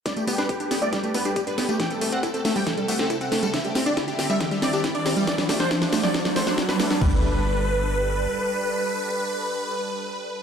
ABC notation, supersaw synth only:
X:1
M:4/4
L:1/16
Q:1/4=138
K:G
V:1 name="Supersaw synth"
d G G B G G G d G G B G G B G G | g A A f A A A g A A f A A f A A | e G G d G G G e G G d G G d G G | d D D c D D D d D D c D D B D D |
B16- | B16 |]